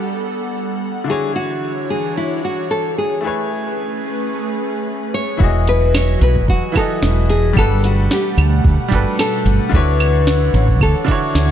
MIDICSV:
0, 0, Header, 1, 6, 480
1, 0, Start_track
1, 0, Key_signature, 4, "major"
1, 0, Tempo, 540541
1, 957, Time_signature, 4, 2, 24, 8
1, 10224, End_track
2, 0, Start_track
2, 0, Title_t, "Nylon-string guitar"
2, 0, Program_c, 0, 24
2, 0, Note_on_c, 0, 67, 78
2, 451, Note_off_c, 0, 67, 0
2, 975, Note_on_c, 0, 68, 89
2, 1202, Note_off_c, 0, 68, 0
2, 1205, Note_on_c, 0, 66, 79
2, 1687, Note_off_c, 0, 66, 0
2, 1690, Note_on_c, 0, 68, 86
2, 1926, Note_off_c, 0, 68, 0
2, 1930, Note_on_c, 0, 64, 85
2, 2147, Note_off_c, 0, 64, 0
2, 2172, Note_on_c, 0, 66, 80
2, 2401, Note_off_c, 0, 66, 0
2, 2404, Note_on_c, 0, 69, 84
2, 2645, Note_off_c, 0, 69, 0
2, 2648, Note_on_c, 0, 68, 84
2, 4287, Note_off_c, 0, 68, 0
2, 4567, Note_on_c, 0, 73, 99
2, 5009, Note_off_c, 0, 73, 0
2, 5050, Note_on_c, 0, 71, 92
2, 5289, Note_off_c, 0, 71, 0
2, 5293, Note_on_c, 0, 73, 105
2, 5526, Note_off_c, 0, 73, 0
2, 5530, Note_on_c, 0, 71, 94
2, 5764, Note_off_c, 0, 71, 0
2, 5768, Note_on_c, 0, 66, 95
2, 6008, Note_off_c, 0, 66, 0
2, 6011, Note_on_c, 0, 69, 103
2, 6480, Note_off_c, 0, 69, 0
2, 6483, Note_on_c, 0, 68, 90
2, 6727, Note_off_c, 0, 68, 0
2, 6734, Note_on_c, 0, 69, 107
2, 6967, Note_off_c, 0, 69, 0
2, 6971, Note_on_c, 0, 66, 82
2, 7211, Note_off_c, 0, 66, 0
2, 7219, Note_on_c, 0, 67, 85
2, 8133, Note_off_c, 0, 67, 0
2, 8170, Note_on_c, 0, 69, 88
2, 8653, Note_off_c, 0, 69, 0
2, 8656, Note_on_c, 0, 71, 102
2, 9609, Note_off_c, 0, 71, 0
2, 9613, Note_on_c, 0, 69, 96
2, 10224, Note_off_c, 0, 69, 0
2, 10224, End_track
3, 0, Start_track
3, 0, Title_t, "Grand piano"
3, 0, Program_c, 1, 0
3, 0, Control_c, 1, 64, 127
3, 0, Note_on_c, 1, 55, 72
3, 0, Note_on_c, 1, 62, 63
3, 0, Note_on_c, 1, 69, 64
3, 0, Note_on_c, 1, 71, 73
3, 0, Note_on_c, 1, 78, 65
3, 919, Note_off_c, 1, 55, 0
3, 926, Note_off_c, 1, 62, 0
3, 927, Note_on_c, 1, 50, 68
3, 933, Note_off_c, 1, 78, 0
3, 940, Note_off_c, 1, 69, 0
3, 941, Note_on_c, 1, 62, 65
3, 947, Note_off_c, 1, 71, 0
3, 957, Note_on_c, 1, 64, 66
3, 969, Control_c, 1, 64, 0
3, 971, Note_on_c, 1, 66, 63
3, 986, Note_on_c, 1, 73, 82
3, 1140, Control_c, 1, 64, 127
3, 2836, Note_off_c, 1, 50, 0
3, 2843, Note_off_c, 1, 62, 0
3, 2847, Note_off_c, 1, 64, 0
3, 2848, Note_on_c, 1, 57, 75
3, 2858, Note_off_c, 1, 66, 0
3, 2861, Note_on_c, 1, 64, 61
3, 2865, Note_off_c, 1, 73, 0
3, 2877, Note_on_c, 1, 68, 66
3, 2889, Control_c, 1, 64, 0
3, 2889, Note_on_c, 1, 71, 68
3, 2904, Note_on_c, 1, 73, 81
3, 3028, Control_c, 1, 64, 127
3, 4757, Note_off_c, 1, 57, 0
3, 4763, Note_off_c, 1, 64, 0
3, 4769, Note_on_c, 1, 52, 83
3, 4771, Note_off_c, 1, 68, 0
3, 4777, Note_off_c, 1, 71, 0
3, 4784, Note_on_c, 1, 64, 84
3, 4785, Note_off_c, 1, 73, 0
3, 4798, Note_on_c, 1, 66, 78
3, 4808, Control_c, 1, 64, 0
3, 4813, Note_on_c, 1, 68, 76
3, 4828, Note_on_c, 1, 75, 97
3, 4960, Control_c, 1, 64, 127
3, 5954, Note_off_c, 1, 52, 0
3, 5965, Note_off_c, 1, 64, 0
3, 5967, Note_on_c, 1, 52, 103
3, 5972, Note_off_c, 1, 66, 0
3, 5980, Note_off_c, 1, 68, 0
3, 5982, Note_on_c, 1, 64, 88
3, 5987, Note_off_c, 1, 75, 0
3, 5997, Note_on_c, 1, 66, 93
3, 6012, Note_on_c, 1, 80, 94
3, 6026, Note_on_c, 1, 75, 106
3, 6676, Note_off_c, 1, 52, 0
3, 6684, Note_off_c, 1, 64, 0
3, 6689, Note_on_c, 1, 55, 93
3, 6691, Note_off_c, 1, 66, 0
3, 6699, Note_off_c, 1, 80, 0
3, 6704, Note_on_c, 1, 62, 77
3, 6706, Note_off_c, 1, 75, 0
3, 6718, Note_on_c, 1, 78, 77
3, 6728, Control_c, 1, 64, 0
3, 6734, Note_on_c, 1, 69, 77
3, 6748, Note_on_c, 1, 71, 95
3, 6878, Control_c, 1, 64, 127
3, 7875, Note_off_c, 1, 55, 0
3, 7885, Note_off_c, 1, 62, 0
3, 7889, Note_on_c, 1, 55, 97
3, 7892, Note_off_c, 1, 78, 0
3, 7900, Note_off_c, 1, 69, 0
3, 7901, Note_on_c, 1, 62, 87
3, 7907, Note_off_c, 1, 71, 0
3, 7917, Note_on_c, 1, 66, 87
3, 7931, Note_on_c, 1, 69, 93
3, 7946, Note_on_c, 1, 71, 111
3, 8597, Note_off_c, 1, 55, 0
3, 8603, Note_off_c, 1, 62, 0
3, 8609, Note_on_c, 1, 50, 90
3, 8611, Note_off_c, 1, 66, 0
3, 8618, Note_off_c, 1, 69, 0
3, 8626, Note_off_c, 1, 71, 0
3, 8626, Note_on_c, 1, 62, 88
3, 8641, Note_on_c, 1, 64, 82
3, 8651, Control_c, 1, 64, 0
3, 8654, Note_on_c, 1, 66, 85
3, 8669, Note_on_c, 1, 73, 97
3, 8790, Control_c, 1, 64, 127
3, 9795, Note_off_c, 1, 50, 0
3, 9806, Note_off_c, 1, 62, 0
3, 9809, Note_on_c, 1, 50, 95
3, 9813, Note_off_c, 1, 64, 0
3, 9820, Note_off_c, 1, 66, 0
3, 9824, Note_on_c, 1, 62, 98
3, 9827, Note_off_c, 1, 73, 0
3, 9838, Note_on_c, 1, 64, 98
3, 9854, Note_on_c, 1, 66, 90
3, 9869, Note_on_c, 1, 73, 114
3, 10224, Note_off_c, 1, 50, 0
3, 10224, Note_off_c, 1, 62, 0
3, 10224, Note_off_c, 1, 64, 0
3, 10224, Note_off_c, 1, 66, 0
3, 10224, Note_off_c, 1, 73, 0
3, 10224, End_track
4, 0, Start_track
4, 0, Title_t, "Analog synth pad"
4, 0, Program_c, 2, 89
4, 0, Note_on_c, 2, 55, 75
4, 0, Note_on_c, 2, 59, 67
4, 0, Note_on_c, 2, 69, 80
4, 0, Note_on_c, 2, 78, 71
4, 922, Note_off_c, 2, 78, 0
4, 938, Note_off_c, 2, 55, 0
4, 939, Note_off_c, 2, 59, 0
4, 939, Note_off_c, 2, 69, 0
4, 955, Note_on_c, 2, 73, 83
4, 956, Note_on_c, 2, 52, 74
4, 959, Note_on_c, 2, 66, 70
4, 962, Note_on_c, 2, 62, 70
4, 2857, Note_off_c, 2, 73, 0
4, 2858, Note_off_c, 2, 52, 0
4, 2859, Note_off_c, 2, 66, 0
4, 2860, Note_off_c, 2, 62, 0
4, 2875, Note_on_c, 2, 61, 71
4, 2876, Note_on_c, 2, 68, 68
4, 2876, Note_on_c, 2, 71, 85
4, 2877, Note_on_c, 2, 57, 80
4, 4777, Note_off_c, 2, 61, 0
4, 4777, Note_off_c, 2, 68, 0
4, 4777, Note_off_c, 2, 71, 0
4, 4778, Note_off_c, 2, 57, 0
4, 4795, Note_on_c, 2, 66, 89
4, 4797, Note_on_c, 2, 54, 74
4, 6697, Note_off_c, 2, 66, 0
4, 6698, Note_off_c, 2, 54, 0
4, 6717, Note_on_c, 2, 57, 78
4, 6718, Note_on_c, 2, 47, 86
4, 6719, Note_on_c, 2, 78, 86
4, 8618, Note_off_c, 2, 57, 0
4, 8619, Note_off_c, 2, 47, 0
4, 8641, Note_on_c, 2, 52, 89
4, 8642, Note_on_c, 2, 73, 76
4, 10224, Note_off_c, 2, 52, 0
4, 10224, Note_off_c, 2, 73, 0
4, 10224, Note_off_c, 2, 78, 0
4, 10224, End_track
5, 0, Start_track
5, 0, Title_t, "Fretless electric bass"
5, 0, Program_c, 3, 35
5, 4796, Note_on_c, 3, 28, 94
5, 5487, Note_off_c, 3, 28, 0
5, 5516, Note_on_c, 3, 35, 97
5, 5756, Note_off_c, 3, 35, 0
5, 5756, Note_on_c, 3, 28, 77
5, 5866, Note_off_c, 3, 28, 0
5, 6236, Note_on_c, 3, 28, 88
5, 6687, Note_off_c, 3, 28, 0
5, 6718, Note_on_c, 3, 31, 92
5, 7167, Note_off_c, 3, 31, 0
5, 7436, Note_on_c, 3, 38, 98
5, 7639, Note_off_c, 3, 38, 0
5, 7676, Note_on_c, 3, 38, 97
5, 7786, Note_off_c, 3, 38, 0
5, 7916, Note_on_c, 3, 31, 92
5, 8026, Note_off_c, 3, 31, 0
5, 8395, Note_on_c, 3, 31, 97
5, 8505, Note_off_c, 3, 31, 0
5, 8635, Note_on_c, 3, 38, 104
5, 9326, Note_off_c, 3, 38, 0
5, 9356, Note_on_c, 3, 33, 105
5, 9597, Note_off_c, 3, 33, 0
5, 9597, Note_on_c, 3, 38, 82
5, 9707, Note_off_c, 3, 38, 0
5, 10077, Note_on_c, 3, 38, 89
5, 10224, Note_off_c, 3, 38, 0
5, 10224, End_track
6, 0, Start_track
6, 0, Title_t, "Drums"
6, 4796, Note_on_c, 9, 36, 114
6, 4803, Note_on_c, 9, 82, 39
6, 4885, Note_off_c, 9, 36, 0
6, 4892, Note_off_c, 9, 82, 0
6, 4937, Note_on_c, 9, 82, 22
6, 5025, Note_off_c, 9, 82, 0
6, 5039, Note_on_c, 9, 46, 98
6, 5044, Note_on_c, 9, 82, 81
6, 5127, Note_off_c, 9, 46, 0
6, 5133, Note_off_c, 9, 82, 0
6, 5178, Note_on_c, 9, 82, 34
6, 5266, Note_off_c, 9, 82, 0
6, 5279, Note_on_c, 9, 38, 98
6, 5279, Note_on_c, 9, 75, 77
6, 5285, Note_on_c, 9, 82, 43
6, 5368, Note_off_c, 9, 38, 0
6, 5368, Note_off_c, 9, 75, 0
6, 5374, Note_off_c, 9, 82, 0
6, 5420, Note_on_c, 9, 82, 23
6, 5508, Note_off_c, 9, 82, 0
6, 5518, Note_on_c, 9, 46, 89
6, 5524, Note_on_c, 9, 82, 74
6, 5607, Note_off_c, 9, 46, 0
6, 5613, Note_off_c, 9, 82, 0
6, 5649, Note_on_c, 9, 36, 57
6, 5659, Note_on_c, 9, 82, 32
6, 5738, Note_off_c, 9, 36, 0
6, 5748, Note_off_c, 9, 82, 0
6, 5757, Note_on_c, 9, 36, 112
6, 5765, Note_on_c, 9, 82, 39
6, 5845, Note_off_c, 9, 36, 0
6, 5854, Note_off_c, 9, 82, 0
6, 5898, Note_on_c, 9, 82, 19
6, 5987, Note_off_c, 9, 82, 0
6, 5997, Note_on_c, 9, 36, 100
6, 5999, Note_on_c, 9, 46, 92
6, 5999, Note_on_c, 9, 75, 70
6, 6005, Note_on_c, 9, 82, 79
6, 6086, Note_off_c, 9, 36, 0
6, 6088, Note_off_c, 9, 46, 0
6, 6088, Note_off_c, 9, 75, 0
6, 6094, Note_off_c, 9, 82, 0
6, 6139, Note_on_c, 9, 82, 32
6, 6227, Note_off_c, 9, 82, 0
6, 6239, Note_on_c, 9, 38, 105
6, 6245, Note_on_c, 9, 82, 45
6, 6328, Note_off_c, 9, 38, 0
6, 6334, Note_off_c, 9, 82, 0
6, 6379, Note_on_c, 9, 82, 21
6, 6468, Note_off_c, 9, 82, 0
6, 6478, Note_on_c, 9, 46, 84
6, 6484, Note_on_c, 9, 82, 77
6, 6567, Note_off_c, 9, 46, 0
6, 6573, Note_off_c, 9, 82, 0
6, 6619, Note_on_c, 9, 82, 36
6, 6708, Note_off_c, 9, 82, 0
6, 6716, Note_on_c, 9, 36, 119
6, 6721, Note_on_c, 9, 75, 69
6, 6727, Note_on_c, 9, 82, 40
6, 6805, Note_off_c, 9, 36, 0
6, 6810, Note_off_c, 9, 75, 0
6, 6816, Note_off_c, 9, 82, 0
6, 6858, Note_on_c, 9, 82, 23
6, 6947, Note_off_c, 9, 82, 0
6, 6960, Note_on_c, 9, 46, 93
6, 6966, Note_on_c, 9, 82, 88
6, 7049, Note_off_c, 9, 46, 0
6, 7055, Note_off_c, 9, 82, 0
6, 7099, Note_on_c, 9, 82, 32
6, 7188, Note_off_c, 9, 82, 0
6, 7201, Note_on_c, 9, 38, 104
6, 7207, Note_on_c, 9, 82, 46
6, 7290, Note_off_c, 9, 38, 0
6, 7296, Note_off_c, 9, 82, 0
6, 7342, Note_on_c, 9, 82, 24
6, 7431, Note_off_c, 9, 82, 0
6, 7441, Note_on_c, 9, 46, 88
6, 7441, Note_on_c, 9, 75, 73
6, 7446, Note_on_c, 9, 82, 77
6, 7530, Note_off_c, 9, 46, 0
6, 7530, Note_off_c, 9, 75, 0
6, 7535, Note_off_c, 9, 82, 0
6, 7578, Note_on_c, 9, 82, 32
6, 7667, Note_off_c, 9, 82, 0
6, 7676, Note_on_c, 9, 36, 127
6, 7684, Note_on_c, 9, 82, 43
6, 7765, Note_off_c, 9, 36, 0
6, 7773, Note_off_c, 9, 82, 0
6, 7820, Note_on_c, 9, 82, 23
6, 7909, Note_off_c, 9, 82, 0
6, 7916, Note_on_c, 9, 36, 109
6, 7922, Note_on_c, 9, 46, 86
6, 7927, Note_on_c, 9, 82, 81
6, 8005, Note_off_c, 9, 36, 0
6, 8010, Note_off_c, 9, 46, 0
6, 8016, Note_off_c, 9, 82, 0
6, 8058, Note_on_c, 9, 82, 33
6, 8147, Note_off_c, 9, 82, 0
6, 8162, Note_on_c, 9, 38, 101
6, 8162, Note_on_c, 9, 75, 73
6, 8168, Note_on_c, 9, 82, 46
6, 8251, Note_off_c, 9, 38, 0
6, 8251, Note_off_c, 9, 75, 0
6, 8257, Note_off_c, 9, 82, 0
6, 8299, Note_on_c, 9, 82, 23
6, 8388, Note_off_c, 9, 82, 0
6, 8400, Note_on_c, 9, 46, 85
6, 8406, Note_on_c, 9, 82, 77
6, 8489, Note_off_c, 9, 46, 0
6, 8495, Note_off_c, 9, 82, 0
6, 8541, Note_on_c, 9, 82, 35
6, 8630, Note_off_c, 9, 82, 0
6, 8637, Note_on_c, 9, 36, 121
6, 8651, Note_on_c, 9, 82, 43
6, 8725, Note_off_c, 9, 36, 0
6, 8739, Note_off_c, 9, 82, 0
6, 8781, Note_on_c, 9, 82, 23
6, 8870, Note_off_c, 9, 82, 0
6, 8882, Note_on_c, 9, 46, 93
6, 8882, Note_on_c, 9, 75, 81
6, 8888, Note_on_c, 9, 82, 85
6, 8971, Note_off_c, 9, 46, 0
6, 8971, Note_off_c, 9, 75, 0
6, 8976, Note_off_c, 9, 82, 0
6, 9019, Note_on_c, 9, 82, 35
6, 9108, Note_off_c, 9, 82, 0
6, 9121, Note_on_c, 9, 38, 98
6, 9127, Note_on_c, 9, 82, 43
6, 9210, Note_off_c, 9, 38, 0
6, 9215, Note_off_c, 9, 82, 0
6, 9259, Note_on_c, 9, 82, 24
6, 9347, Note_off_c, 9, 82, 0
6, 9361, Note_on_c, 9, 46, 88
6, 9367, Note_on_c, 9, 82, 81
6, 9450, Note_off_c, 9, 46, 0
6, 9455, Note_off_c, 9, 82, 0
6, 9490, Note_on_c, 9, 36, 59
6, 9499, Note_on_c, 9, 82, 33
6, 9579, Note_off_c, 9, 36, 0
6, 9587, Note_off_c, 9, 82, 0
6, 9598, Note_on_c, 9, 36, 127
6, 9601, Note_on_c, 9, 75, 71
6, 9606, Note_on_c, 9, 82, 42
6, 9687, Note_off_c, 9, 36, 0
6, 9689, Note_off_c, 9, 75, 0
6, 9695, Note_off_c, 9, 82, 0
6, 9738, Note_on_c, 9, 82, 22
6, 9827, Note_off_c, 9, 82, 0
6, 9838, Note_on_c, 9, 46, 82
6, 9839, Note_on_c, 9, 36, 109
6, 9844, Note_on_c, 9, 82, 78
6, 9927, Note_off_c, 9, 36, 0
6, 9927, Note_off_c, 9, 46, 0
6, 9933, Note_off_c, 9, 82, 0
6, 9978, Note_on_c, 9, 82, 35
6, 10067, Note_off_c, 9, 82, 0
6, 10081, Note_on_c, 9, 38, 98
6, 10087, Note_on_c, 9, 82, 46
6, 10170, Note_off_c, 9, 38, 0
6, 10176, Note_off_c, 9, 82, 0
6, 10224, End_track
0, 0, End_of_file